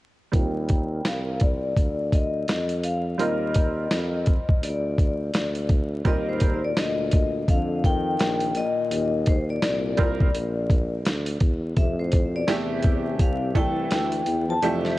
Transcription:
0.32 tuba D#2, upright piano G3 C4 F4 A#4, vibraphone G5, kick, closed hi-hat
0.69 kick, closed hi-hat
1.05 tuba C2, vibraphone F5, snare, closed hi-hat
1.40 vibraphone D5, kick, closed hi-hat
1.76 tuba D2, kick, closed hi-hat
2.12 vibraphone D#5, kick, closed hi-hat
2.48 tuba F2, snare, closed hi-hat
2.69 closed hi-hat
2.83 vibraphone F5, closed hi-hat
3.18 tuba D#2, upright piano G3 C4 F4 A#4, vibraphone D#5, closed hi-hat
3.54 kick, closed hi-hat
3.91 tuba F2, snare, closed hi-hat
4.26 kick, closed hi-hat
4.49 kick
4.62 tuba D2, vibraphone D5, closed hi-hat
4.98 kick, closed hi-hat
5.34 tuba D2, snare, closed hi-hat
5.55 closed hi-hat
5.69 kick, closed hi-hat
6.05 tuba D#2, trombone A#2, upright piano G3 C4 F4 A#4, vibraphone D#5, kick, closed hi-hat
6.27 trombone G#2, vibraphone C5
6.40 kick, closed hi-hat
6.64 trombone A#2, vibraphone D5
6.77 tuba D2, trombone A#2, vibraphone D#5, snare, closed hi-hat
7.11 kick, closed hi-hat
7.48 tuba F2, trombone D3, vibraphone F5, kick, closed hi-hat
7.84 trombone D#3, vibraphone G5, kick, closed hi-hat
8.19 tuba A#1, snare, closed hi-hat
8.40 closed hi-hat
8.55 trombone A#2, vibraphone D#5, closed hi-hat
8.91 tuba D#2, closed hi-hat
9.26 trombone G#2, vibraphone C5, kick, closed hi-hat
9.49 trombone A#2, vibraphone D5
9.62 tuba C2, snare, closed hi-hat
9.97 upright piano G3 C4 F4 A#4, kick, closed hi-hat
10.20 kick
10.34 tuba A#1, closed hi-hat
10.70 kick, closed hi-hat
11.05 tuba D2, snare, closed hi-hat
11.26 closed hi-hat
11.40 tuba E2, kick, closed hi-hat
11.76 tuba F2, trombone C3, vibraphone E5, kick, closed hi-hat
11.98 trombone A2, vibraphone C5
12.12 kick, closed hi-hat
12.33 trombone B2, vibraphone D5
12.47 tuba E2, trombone C3, upright piano E3 A3 D4 G4, vibraphone E5, snare, closed hi-hat
12.82 kick, closed hi-hat
13.18 tuba C2, trombone C3, vibraphone F5, kick, closed hi-hat
13.54 trombone E3, upright piano E3 A3 D4 A4, vibraphone G5, kick, closed hi-hat
13.91 tuba D2, snare, closed hi-hat
14.12 closed hi-hat
14.26 tuba E2, closed hi-hat
14.49 trombone F3, vibraphone A5
14.62 tuba F2, trombone C3, upright piano E3 A3 D4 G4, vibraphone E5, closed hi-hat
14.85 snare

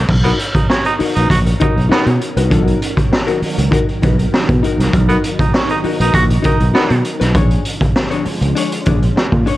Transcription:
0.08 fingered electric bass B1, string machine D#3 F#3 C#4 A#4, muted hollow-body jazz guitar stroke, kick, crash
0.24 baritone saxophone B3, hollow-body jazz guitar D#4 F#4 A#4, closed hi-hat
0.39 muted hollow-body jazz guitar stroke, closed hi-hat
0.55 baritone saxophone D#4, muted fingered electric bass stroke, muted hollow-body jazz guitar stroke, kick, closed hi-hat
0.69 baritone saxophone C#4, muted hollow-body jazz guitar stroke, snare
0.85 baritone saxophone D#4, muted hollow-body jazz guitar stroke, closed hi-hat
0.99 hollow-body jazz guitar D#4 F#4 A#4, muted fingered electric bass stroke, open hi-hat
1.15 fingered electric bass A#1, baritone saxophone D#4, hollow-body jazz guitar D#4 F#4 B4, closed hi-hat
1.30 fingered electric bass A#1, baritone saxophone F#4, kick, closed hi-hat
1.46 muted hollow-body jazz guitar stroke, closed hi-hat
1.60 hollow-body jazz guitar D#4 F#4 A#4, baritone saxophone D#4, kick, closed hi-hat
1.76 fingered electric bass B1, muted hollow-body jazz guitar stroke, closed hi-hat
1.89 baritone saxophone B3, hollow-body jazz guitar D#4 F#4 A#4, snare
2.06 fingered electric bass B2, closed hi-hat
2.21 muted hollow-body jazz guitar stroke, closed hi-hat
2.37 fingered electric bass C2, hollow-body jazz guitar D#4 F#4 B4, closed hi-hat
2.50 fingered electric bass B1, hollow-body jazz guitar D4 F4 A4, kick, closed hi-hat
2.62 hollow-body jazz guitar D#4 F#4 A#4
2.68 closed hi-hat
2.82 closed hi-hat
2.97 muted hollow-body jazz guitar stroke, muted fingered electric bass stroke, kick, closed hi-hat
3.12 muted hollow-body jazz guitar stroke, snare
3.27 hollow-body jazz guitar D#4 F#4 A#4, closed hi-hat
3.42 muted hollow-body jazz guitar stroke, muted fingered electric bass stroke, open hi-hat
3.57 fingered electric bass C#2, muted hollow-body jazz guitar stroke, closed hi-hat
3.71 hollow-body jazz guitar D#4 F#4 A#4, string machine D#4, kick, closed hi-hat
3.88 muted hollow-body jazz guitar stroke, closed hi-hat
4.02 fingered electric bass B1, hollow-body jazz guitar D#4 F#4 B4, kick, closed hi-hat
4.19 muted hollow-body jazz guitar stroke, closed hi-hat
4.33 muted hollow-body jazz guitar stroke, snare
4.49 fingered electric bass B2, muted hollow-body jazz guitar stroke, kick, closed hi-hat
4.63 hollow-body jazz guitar D#4 F#4 A#4, closed hi-hat
4.78 fingered electric bass C2, muted hollow-body jazz guitar stroke, snare, closed hi-hat
4.93 fingered electric bass B1, muted hollow-body jazz guitar stroke, kick, closed hi-hat
5.08 baritone saxophone B3, hollow-body jazz guitar D#4 F#4 A#4, closed hi-hat
5.24 muted hollow-body jazz guitar stroke, closed hi-hat
5.39 baritone saxophone D#4, muted fingered electric bass stroke, muted hollow-body jazz guitar stroke, kick, closed hi-hat
5.54 baritone saxophone C#4, muted hollow-body jazz guitar stroke, snare
5.69 baritone saxophone D#4, muted hollow-body jazz guitar stroke, closed hi-hat
5.84 hollow-body jazz guitar D#4 F#4 A#4, muted fingered electric bass stroke, open hi-hat
6.00 fingered electric bass A#1, baritone saxophone D#4, hollow-body jazz guitar D#4 F#4 B4, closed hi-hat
6.14 fingered electric bass A#1, baritone saxophone F#4, muted hollow-body jazz guitar stroke, kick, closed hi-hat
6.29 muted hollow-body jazz guitar stroke, closed hi-hat
6.42 hollow-body jazz guitar D#4 F#4 A#4, baritone saxophone D#4, kick, closed hi-hat
6.59 fingered electric bass B1, muted hollow-body jazz guitar stroke, closed hi-hat
6.74 baritone saxophone B3, hollow-body jazz guitar D#4 F#4 A#4, snare
6.90 fingered electric bass B2, closed hi-hat
7.04 muted hollow-body jazz guitar stroke, closed hi-hat
7.20 fingered electric bass B1, hollow-body jazz guitar D#4 F#4 B4, snare, closed hi-hat
7.34 fingered electric bass A#1, string machine D3 F3 G#3 C#4, hollow-body jazz guitar D4 G#4 C#5, kick, closed hi-hat
7.51 closed hi-hat
7.65 closed hi-hat
7.81 muted fingered electric bass stroke, muted hollow-body jazz guitar stroke, kick, closed hi-hat
7.96 muted hollow-body jazz guitar stroke, snare
8.11 hollow-body jazz guitar D4 G#4 C#5, closed hi-hat
8.25 muted hollow-body jazz guitar stroke, muted fingered electric bass stroke, open hi-hat
8.41 fingered electric bass C#2, muted hollow-body jazz guitar stroke, closed hi-hat
8.55 hollow-body jazz guitar D4 G#4 C#5, closed hi-hat
8.72 muted hollow-body jazz guitar stroke, closed hi-hat
8.85 fingered electric bass A#1, hollow-body jazz guitar D4 G#4 D5, kick, closed hi-hat
9.02 muted hollow-body jazz guitar stroke, closed hi-hat
9.16 muted hollow-body jazz guitar stroke, snare
9.32 fingered electric bass A#2, muted hollow-body jazz guitar stroke, kick, closed hi-hat
9.46 hollow-body jazz guitar D4 G#4 C#5, closed hi-hat

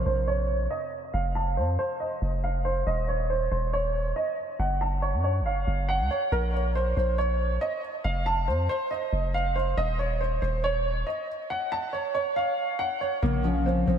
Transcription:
Already playing: harp C4
0.06 808-style bass A#1, grand piano C5
0.28 grand piano C#5
0.70 grand piano D#5
1.14 808-style bass F1, grand piano F5
1.35 grand piano A5
1.57 808-style bass F2, grand piano C5
1.79 grand piano C5
2.00 grand piano D#5
2.22 808-style bass F1
2.44 grand piano F5
2.65 grand piano C5
2.87 808-style bass D#1, grand piano D#5
3.08 grand piano C#5
3.30 grand piano C5
3.51 808-style bass D#1, grand piano C5
3.73 grand piano C#5
4.16 grand piano D#5
4.59 808-style bass F#1, grand piano F#5
4.81 grand piano A5
5.02 grand piano C#5
5.13 808-style bass F#2
5.24 grand piano C#5
5.40 808-style bass F#1
5.46 grand piano F5
5.67 808-style bass F#1
5.89 grand piano F#5
6.00 808-style bass C#2
6.11 grand piano C#5
6.32 808-style bass A#1, grand piano A#4
6.54 grand piano C#5
6.75 grand piano C5
6.97 808-style bass A#1, grand piano C5
7.18 grand piano C#5
7.61 grand piano D#5
8.04 808-style bass F1, grand piano F5
8.26 grand piano A5
8.48 808-style bass F2, grand piano C5
8.69 grand piano C5
8.91 grand piano D#5
9.13 808-style bass F1
9.34 grand piano F5
9.55 grand piano C5
9.77 808-style bass D#1, grand piano D#5
9.99 grand piano C#5
10.21 grand piano C5
10.42 808-style bass D#1, grand piano C5
10.64 grand piano C#5
11.06 grand piano D#5
11.50 grand piano F#5
11.72 grand piano A5
11.93 grand piano C#5
12.15 grand piano C#5
12.36 grand piano F5
12.79 grand piano F#5
13.01 grand piano C#5
13.22 808-style bass A#1, harp C#3, grand piano A#3
13.44 harp F3, grand piano C#4
13.66 grand piano C4
13.87 808-style bass A#1, harp F3, grand piano C4

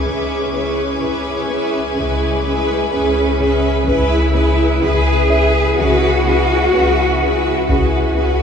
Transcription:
Already playing: music box C#4 C#6, violin section C#6 D6 G#6
0.06 double bass section C#2, cello section C#3 C#4, ambient pad E4 B4 G#5, viola section G#4, violin section B4 E5
0.53 cello section C#4, viola section G#4, violin section B4 E5
1.01 double bass section C#2, cello section C#3, viola section G#4, violin section B4 E5
1.49 cello section C#4, viola section G#4, violin section B4 E5
1.96 double bass section C#2, cello section C#3 G#3, viola section G#4, violin section B4 E5
2.44 cello section C#4, viola section G#4, violin section B4 E5
2.91 double bass section C#2, cello section C#4, viola section G#4, violin section B4 E5
3.39 cello section C#3, viola section G#4, violin section B4 E5
3.86 double bass section C#2, cello section C#3 E4, ambient pad E4 B4 G#5, viola section G#4, violin section B4 E5, music box B4, taiko
4.33 cello section C#4, viola section G#4, violin section B4 E5
4.82 double bass section C#2, cello section C#3 G#4, viola section G#4, violin section B4 E5
5.30 cello section C#4, viola section G#4, violin section B4 E5, music box E5
5.77 double bass section C#2, cello section C#3 F#4, viola section G#4, violin section B4 E5
6.25 cello section C#4, viola section G#4, violin section B4 E5
6.73 double bass section C#2, cello section C#4, viola section G#4, violin section B4 E5
7.21 cello section C#3, viola section G#4, violin section B4 E5
7.68 double bass section C#2, cello section C#3 F#4, ambient pad E4 B4 G#5, viola section G#4, violin section B4 E5, taiko, reverse cymbal
8.15 cello section C#4, viola section G#4, violin section B4 E5

